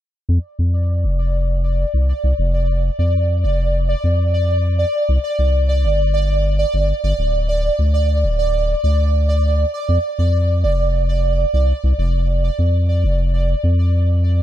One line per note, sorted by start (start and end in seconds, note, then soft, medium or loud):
0.29 0.38 F2 loud
0.29 14.43 D5 medium
0.59 1.05 F2 medium
1.04 1.85 F1 medium
1.94 2.13 C2 medium
2.24 2.33 C2 medium
2.39 2.90 F1 loud
2.99 3.45 F2 medium
3.44 3.95 F1 medium
4.04 4.85 F2 medium
5.09 5.18 C2 loud
5.39 5.85 C2 medium
5.84 6.65 G1 loud
6.74 6.93 G1 medium
7.04 7.13 G1 medium
7.19 7.70 D1 medium
7.79 8.25 D2 medium
8.24 8.75 D1 medium
8.84 9.65 D2 medium
9.89 9.98 F2 loud
10.19 10.65 F2 medium
10.64 11.45 F1 loud
11.54 11.73 C2 medium
11.84 11.93 C2 loud
11.99 12.50 F1 medium
12.59 13.05 F2 medium
13.04 13.55 F1 loud
13.64 14.43 F2 medium